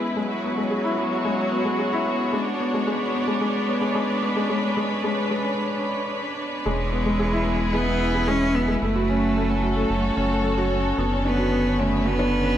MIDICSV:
0, 0, Header, 1, 5, 480
1, 0, Start_track
1, 0, Tempo, 540541
1, 153, Time_signature, 4, 2, 24, 8
1, 11168, End_track
2, 0, Start_track
2, 0, Title_t, "String section"
2, 0, Program_c, 0, 48
2, 0, Note_on_c, 0, 52, 68
2, 0, Note_on_c, 0, 64, 69
2, 0, Note_on_c, 0, 68, 68
2, 0, Note_on_c, 0, 71, 67
2, 152, Note_on_c, 0, 54, 89
2, 153, Note_off_c, 0, 52, 0
2, 154, Note_off_c, 0, 68, 0
2, 231, Note_on_c, 0, 66, 82
2, 916, Note_off_c, 0, 71, 0
2, 921, Note_off_c, 0, 64, 0
2, 1014, Note_on_c, 0, 73, 77
2, 2070, Note_on_c, 0, 62, 82
2, 2072, Note_off_c, 0, 54, 0
2, 2491, Note_on_c, 0, 71, 76
2, 3607, Note_off_c, 0, 66, 0
2, 5909, Note_on_c, 0, 52, 75
2, 6104, Note_on_c, 0, 64, 74
2, 6597, Note_on_c, 0, 68, 82
2, 6679, Note_off_c, 0, 62, 0
2, 6679, Note_off_c, 0, 73, 0
2, 7831, Note_off_c, 0, 52, 0
2, 7834, Note_off_c, 0, 68, 0
2, 7840, Note_on_c, 0, 54, 72
2, 8019, Note_on_c, 0, 66, 77
2, 8133, Note_on_c, 0, 69, 81
2, 8472, Note_off_c, 0, 71, 0
2, 8598, Note_off_c, 0, 64, 0
2, 8606, Note_on_c, 0, 73, 67
2, 9751, Note_on_c, 0, 50, 78
2, 9756, Note_off_c, 0, 54, 0
2, 10320, Note_on_c, 0, 71, 91
2, 10993, Note_off_c, 0, 69, 0
2, 11168, Note_off_c, 0, 50, 0
2, 11168, Note_off_c, 0, 66, 0
2, 11168, Note_off_c, 0, 71, 0
2, 11168, Note_off_c, 0, 73, 0
2, 11168, End_track
3, 0, Start_track
3, 0, Title_t, "Cello"
3, 0, Program_c, 1, 42
3, 5914, Note_on_c, 1, 56, 95
3, 6865, Note_on_c, 1, 59, 100
3, 6879, Note_off_c, 1, 56, 0
3, 7348, Note_on_c, 1, 61, 114
3, 7361, Note_off_c, 1, 59, 0
3, 7590, Note_on_c, 1, 59, 99
3, 7604, Note_off_c, 1, 61, 0
3, 7821, Note_off_c, 1, 59, 0
3, 7826, Note_on_c, 1, 57, 102
3, 9234, Note_off_c, 1, 57, 0
3, 10002, Note_on_c, 1, 59, 92
3, 10475, Note_on_c, 1, 57, 86
3, 10488, Note_off_c, 1, 59, 0
3, 10715, Note_on_c, 1, 59, 109
3, 10728, Note_off_c, 1, 57, 0
3, 11168, Note_off_c, 1, 59, 0
3, 11168, End_track
4, 0, Start_track
4, 0, Title_t, "Felt piano"
4, 0, Program_c, 2, 0
4, 0, Control_c, 2, 64, 127
4, 0, Note_on_c, 2, 56, 69
4, 0, Note_on_c, 2, 59, 67
4, 0, Note_on_c, 2, 64, 90
4, 0, Note_on_c, 2, 68, 71
4, 146, Note_off_c, 2, 56, 0
4, 146, Note_on_c, 2, 56, 73
4, 164, Control_c, 2, 64, 0
4, 167, Note_off_c, 2, 68, 0
4, 168, Note_off_c, 2, 59, 0
4, 170, Note_off_c, 2, 64, 0
4, 263, Note_off_c, 2, 56, 0
4, 294, Control_c, 2, 64, 127
4, 391, Note_on_c, 2, 59, 64
4, 506, Note_off_c, 2, 59, 0
4, 509, Note_on_c, 2, 56, 62
4, 625, Note_off_c, 2, 56, 0
4, 627, Note_on_c, 2, 68, 72
4, 744, Note_off_c, 2, 68, 0
4, 749, Note_on_c, 2, 64, 88
4, 819, Note_off_c, 2, 64, 0
4, 867, Note_on_c, 2, 59, 66
4, 984, Note_off_c, 2, 59, 0
4, 1108, Note_on_c, 2, 56, 73
4, 1224, Note_off_c, 2, 56, 0
4, 1346, Note_on_c, 2, 59, 75
4, 1463, Note_off_c, 2, 59, 0
4, 1466, Note_on_c, 2, 56, 70
4, 1583, Note_off_c, 2, 56, 0
4, 1588, Note_on_c, 2, 68, 81
4, 1704, Note_off_c, 2, 68, 0
4, 1709, Note_on_c, 2, 64, 95
4, 1779, Note_off_c, 2, 64, 0
4, 1830, Note_on_c, 2, 59, 73
4, 1945, Note_off_c, 2, 59, 0
4, 2067, Note_on_c, 2, 56, 82
4, 2085, Control_c, 2, 64, 0
4, 2184, Note_off_c, 2, 56, 0
4, 2258, Control_c, 2, 64, 127
4, 2310, Note_on_c, 2, 59, 74
4, 2425, Note_off_c, 2, 59, 0
4, 2432, Note_on_c, 2, 56, 74
4, 2533, Note_off_c, 2, 56, 0
4, 2549, Note_on_c, 2, 56, 84
4, 2665, Note_off_c, 2, 56, 0
4, 2788, Note_on_c, 2, 59, 71
4, 2904, Note_off_c, 2, 59, 0
4, 2909, Note_on_c, 2, 56, 80
4, 3012, Note_off_c, 2, 56, 0
4, 3028, Note_on_c, 2, 56, 76
4, 3144, Note_off_c, 2, 56, 0
4, 3273, Note_on_c, 2, 59, 73
4, 3387, Note_off_c, 2, 59, 0
4, 3387, Note_on_c, 2, 56, 75
4, 3491, Note_off_c, 2, 56, 0
4, 3507, Note_on_c, 2, 56, 87
4, 3624, Note_off_c, 2, 56, 0
4, 3749, Note_on_c, 2, 59, 72
4, 3865, Note_off_c, 2, 59, 0
4, 3874, Note_on_c, 2, 56, 82
4, 3974, Note_off_c, 2, 56, 0
4, 3991, Note_on_c, 2, 56, 86
4, 4106, Note_off_c, 2, 56, 0
4, 4233, Note_on_c, 2, 56, 79
4, 4347, Note_off_c, 2, 56, 0
4, 4474, Note_on_c, 2, 56, 87
4, 4587, Note_off_c, 2, 56, 0
4, 4712, Note_on_c, 2, 56, 82
4, 4826, Note_off_c, 2, 56, 0
4, 5913, Note_on_c, 2, 56, 86
4, 5923, Control_c, 2, 64, 0
4, 6026, Note_off_c, 2, 56, 0
4, 6057, Control_c, 2, 64, 127
4, 6151, Note_on_c, 2, 59, 76
4, 6266, Note_off_c, 2, 59, 0
4, 6270, Note_on_c, 2, 56, 72
4, 6385, Note_off_c, 2, 56, 0
4, 6389, Note_on_c, 2, 68, 80
4, 6505, Note_off_c, 2, 68, 0
4, 6510, Note_on_c, 2, 64, 95
4, 6580, Note_off_c, 2, 64, 0
4, 6627, Note_on_c, 2, 59, 77
4, 6744, Note_off_c, 2, 59, 0
4, 6871, Note_on_c, 2, 56, 76
4, 6986, Note_off_c, 2, 56, 0
4, 6991, Note_on_c, 2, 59, 75
4, 7106, Note_off_c, 2, 59, 0
4, 7106, Note_on_c, 2, 64, 77
4, 7223, Note_off_c, 2, 64, 0
4, 7232, Note_on_c, 2, 68, 69
4, 7346, Note_off_c, 2, 68, 0
4, 7347, Note_on_c, 2, 56, 86
4, 7464, Note_off_c, 2, 56, 0
4, 7587, Note_on_c, 2, 59, 73
4, 7704, Note_off_c, 2, 59, 0
4, 7707, Note_on_c, 2, 56, 82
4, 7824, Note_off_c, 2, 56, 0
4, 7829, Note_on_c, 2, 69, 84
4, 7846, Control_c, 2, 64, 0
4, 7945, Note_off_c, 2, 69, 0
4, 7953, Note_on_c, 2, 66, 94
4, 8021, Note_off_c, 2, 66, 0
4, 8025, Control_c, 2, 64, 127
4, 8073, Note_on_c, 2, 61, 75
4, 8187, Note_off_c, 2, 61, 0
4, 8315, Note_on_c, 2, 57, 85
4, 8428, Note_off_c, 2, 57, 0
4, 8433, Note_on_c, 2, 61, 71
4, 8547, Note_off_c, 2, 61, 0
4, 8552, Note_on_c, 2, 66, 73
4, 8666, Note_off_c, 2, 66, 0
4, 8674, Note_on_c, 2, 69, 77
4, 8787, Note_off_c, 2, 69, 0
4, 8791, Note_on_c, 2, 57, 76
4, 8906, Note_off_c, 2, 57, 0
4, 9030, Note_on_c, 2, 61, 77
4, 9145, Note_off_c, 2, 61, 0
4, 9153, Note_on_c, 2, 57, 74
4, 9267, Note_off_c, 2, 57, 0
4, 9272, Note_on_c, 2, 69, 82
4, 9386, Note_off_c, 2, 69, 0
4, 9393, Note_on_c, 2, 66, 100
4, 9461, Note_off_c, 2, 66, 0
4, 9512, Note_on_c, 2, 61, 72
4, 9627, Note_off_c, 2, 61, 0
4, 9752, Note_on_c, 2, 59, 83
4, 9765, Control_c, 2, 64, 0
4, 9866, Note_off_c, 2, 59, 0
4, 9874, Note_on_c, 2, 61, 67
4, 9919, Control_c, 2, 64, 127
4, 9987, Note_off_c, 2, 61, 0
4, 9991, Note_on_c, 2, 62, 75
4, 10106, Note_off_c, 2, 62, 0
4, 10110, Note_on_c, 2, 66, 79
4, 10225, Note_off_c, 2, 66, 0
4, 10228, Note_on_c, 2, 59, 84
4, 10344, Note_off_c, 2, 59, 0
4, 10466, Note_on_c, 2, 61, 74
4, 10584, Note_off_c, 2, 61, 0
4, 10588, Note_on_c, 2, 59, 76
4, 10704, Note_off_c, 2, 59, 0
4, 10706, Note_on_c, 2, 66, 85
4, 10823, Note_off_c, 2, 66, 0
4, 10825, Note_on_c, 2, 62, 102
4, 10897, Note_off_c, 2, 62, 0
4, 10942, Note_on_c, 2, 61, 71
4, 11061, Note_off_c, 2, 61, 0
4, 11168, End_track
5, 0, Start_track
5, 0, Title_t, "Analog synth bass"
5, 0, Program_c, 3, 38
5, 0, Note_on_c, 3, 28, 92
5, 108, Note_off_c, 3, 28, 0
5, 149, Note_on_c, 3, 30, 90
5, 1068, Note_off_c, 3, 30, 0
5, 2071, Note_on_c, 3, 30, 91
5, 3949, Note_off_c, 3, 30, 0
5, 3993, Note_on_c, 3, 30, 99
5, 4910, Note_off_c, 3, 30, 0
5, 5912, Note_on_c, 3, 28, 103
5, 7790, Note_off_c, 3, 28, 0
5, 7830, Note_on_c, 3, 30, 98
5, 8749, Note_off_c, 3, 30, 0
5, 8788, Note_on_c, 3, 30, 96
5, 8977, Note_off_c, 3, 30, 0
5, 9030, Note_on_c, 3, 30, 87
5, 9709, Note_off_c, 3, 30, 0
5, 9748, Note_on_c, 3, 30, 97
5, 11168, Note_off_c, 3, 30, 0
5, 11168, End_track
0, 0, End_of_file